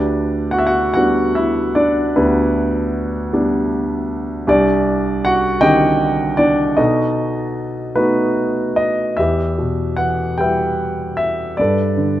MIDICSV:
0, 0, Header, 1, 2, 480
1, 0, Start_track
1, 0, Key_signature, 1, "major"
1, 0, Tempo, 798935
1, 1296, Time_signature, 6, 3, 24, 8
1, 1766, Tempo, 771208
1, 4646, Tempo, 803213
1, 5608, Key_signature, 1, "minor"
1, 7415, End_track
2, 0, Start_track
2, 0, Title_t, "Grand piano"
2, 0, Program_c, 0, 0
2, 0, Control_c, 0, 64, 127
2, 0, Note_on_c, 0, 38, 55
2, 0, Note_on_c, 0, 62, 50
2, 0, Note_on_c, 0, 67, 52
2, 0, Note_on_c, 0, 71, 49
2, 0, Note_on_c, 0, 74, 69
2, 304, Note_off_c, 0, 62, 0
2, 305, Note_off_c, 0, 67, 0
2, 307, Note_off_c, 0, 71, 0
2, 308, Note_on_c, 0, 78, 75
2, 320, Note_on_c, 0, 66, 59
2, 341, Note_off_c, 0, 74, 0
2, 352, Note_on_c, 0, 76, 64
2, 363, Note_off_c, 0, 78, 0
2, 364, Note_off_c, 0, 66, 0
2, 400, Note_on_c, 0, 78, 78
2, 405, Note_off_c, 0, 76, 0
2, 408, Note_on_c, 0, 66, 58
2, 553, Note_off_c, 0, 78, 0
2, 559, Note_off_c, 0, 66, 0
2, 562, Note_on_c, 0, 78, 77
2, 571, Note_on_c, 0, 66, 61
2, 578, Note_on_c, 0, 55, 45
2, 579, Note_on_c, 0, 59, 40
2, 582, Note_on_c, 0, 62, 49
2, 799, Note_off_c, 0, 66, 0
2, 812, Note_on_c, 0, 76, 70
2, 819, Note_off_c, 0, 78, 0
2, 826, Note_on_c, 0, 64, 58
2, 1046, Note_off_c, 0, 64, 0
2, 1049, Note_off_c, 0, 62, 0
2, 1052, Note_on_c, 0, 74, 74
2, 1058, Note_on_c, 0, 62, 59
2, 1063, Note_off_c, 0, 76, 0
2, 1271, Note_off_c, 0, 38, 0
2, 1279, Note_off_c, 0, 62, 0
2, 1295, Note_off_c, 0, 59, 0
2, 1297, Note_on_c, 0, 71, 66
2, 1298, Note_on_c, 0, 38, 61
2, 1300, Note_off_c, 0, 74, 0
2, 1304, Note_on_c, 0, 59, 45
2, 1305, Note_on_c, 0, 62, 43
2, 1309, Note_on_c, 0, 67, 46
2, 1984, Note_off_c, 0, 55, 0
2, 1999, Note_off_c, 0, 59, 0
2, 2005, Note_off_c, 0, 62, 0
2, 2008, Note_on_c, 0, 55, 47
2, 2008, Note_on_c, 0, 59, 45
2, 2014, Note_on_c, 0, 62, 53
2, 2223, Note_off_c, 0, 71, 0
2, 2228, Note_off_c, 0, 67, 0
2, 2696, Note_off_c, 0, 38, 0
2, 2699, Note_off_c, 0, 59, 0
2, 2700, Note_off_c, 0, 55, 0
2, 2703, Note_off_c, 0, 62, 0
2, 2720, Note_on_c, 0, 36, 68
2, 2724, Note_on_c, 0, 62, 57
2, 2724, Note_on_c, 0, 67, 55
2, 2728, Control_c, 0, 64, 0
2, 2731, Note_on_c, 0, 74, 83
2, 2824, Control_c, 0, 64, 127
2, 3172, Note_off_c, 0, 62, 0
2, 3172, Note_off_c, 0, 67, 0
2, 3175, Note_off_c, 0, 74, 0
2, 3202, Note_on_c, 0, 78, 88
2, 3208, Note_on_c, 0, 66, 72
2, 3426, Note_off_c, 0, 66, 0
2, 3427, Note_on_c, 0, 75, 69
2, 3427, Note_on_c, 0, 79, 96
2, 3431, Note_on_c, 0, 51, 48
2, 3432, Note_on_c, 0, 60, 44
2, 3436, Note_on_c, 0, 50, 56
2, 3436, Note_on_c, 0, 67, 68
2, 3446, Note_off_c, 0, 78, 0
2, 3889, Note_off_c, 0, 75, 0
2, 3894, Note_off_c, 0, 67, 0
2, 3902, Note_on_c, 0, 74, 83
2, 3912, Note_on_c, 0, 62, 62
2, 3929, Note_off_c, 0, 79, 0
2, 4133, Note_off_c, 0, 36, 0
2, 4133, Note_off_c, 0, 74, 0
2, 4134, Note_off_c, 0, 51, 0
2, 4134, Note_off_c, 0, 60, 0
2, 4136, Note_off_c, 0, 50, 0
2, 4138, Note_off_c, 0, 62, 0
2, 4148, Note_on_c, 0, 75, 72
2, 4150, Note_on_c, 0, 63, 50
2, 4152, Note_on_c, 0, 66, 46
2, 4153, Note_on_c, 0, 47, 64
2, 4158, Note_on_c, 0, 69, 50
2, 4167, Control_c, 0, 64, 0
2, 4285, Control_c, 0, 64, 127
2, 4873, Note_off_c, 0, 63, 0
2, 4878, Note_on_c, 0, 57, 42
2, 4878, Note_on_c, 0, 71, 73
2, 4879, Note_off_c, 0, 66, 0
2, 4882, Note_on_c, 0, 63, 51
2, 4884, Note_on_c, 0, 59, 41
2, 4888, Note_on_c, 0, 66, 48
2, 5339, Note_off_c, 0, 75, 0
2, 5343, Note_off_c, 0, 69, 0
2, 5361, Note_on_c, 0, 75, 73
2, 5379, Note_off_c, 0, 71, 0
2, 5582, Note_off_c, 0, 47, 0
2, 5583, Note_off_c, 0, 57, 0
2, 5585, Note_off_c, 0, 63, 0
2, 5586, Note_off_c, 0, 66, 0
2, 5587, Note_off_c, 0, 59, 0
2, 5602, Note_on_c, 0, 76, 67
2, 5607, Note_on_c, 0, 40, 51
2, 5612, Note_off_c, 0, 75, 0
2, 5617, Control_c, 0, 64, 0
2, 5618, Note_on_c, 0, 67, 48
2, 5621, Note_on_c, 0, 71, 48
2, 5724, Control_c, 0, 64, 127
2, 5851, Note_on_c, 0, 47, 41
2, 6079, Note_on_c, 0, 78, 73
2, 6087, Note_on_c, 0, 52, 43
2, 6102, Note_off_c, 0, 76, 0
2, 6314, Note_off_c, 0, 67, 0
2, 6315, Note_off_c, 0, 71, 0
2, 6325, Note_on_c, 0, 79, 73
2, 6330, Note_on_c, 0, 55, 46
2, 6334, Note_off_c, 0, 78, 0
2, 6341, Note_on_c, 0, 71, 55
2, 6343, Note_on_c, 0, 76, 52
2, 6785, Note_off_c, 0, 79, 0
2, 6789, Note_off_c, 0, 76, 0
2, 6790, Note_off_c, 0, 47, 0
2, 6798, Note_on_c, 0, 76, 77
2, 7024, Note_off_c, 0, 52, 0
2, 7026, Note_off_c, 0, 40, 0
2, 7027, Note_off_c, 0, 55, 0
2, 7031, Note_off_c, 0, 71, 0
2, 7039, Note_on_c, 0, 74, 68
2, 7051, Note_off_c, 0, 76, 0
2, 7052, Note_on_c, 0, 43, 54
2, 7057, Control_c, 0, 64, 0
2, 7061, Note_on_c, 0, 71, 51
2, 7062, Note_on_c, 0, 69, 56
2, 7146, Control_c, 0, 64, 127
2, 7278, Note_on_c, 0, 50, 45
2, 7415, Note_off_c, 0, 43, 0
2, 7415, Note_off_c, 0, 50, 0
2, 7415, Note_off_c, 0, 69, 0
2, 7415, Note_off_c, 0, 71, 0
2, 7415, Note_off_c, 0, 74, 0
2, 7415, End_track
0, 0, End_of_file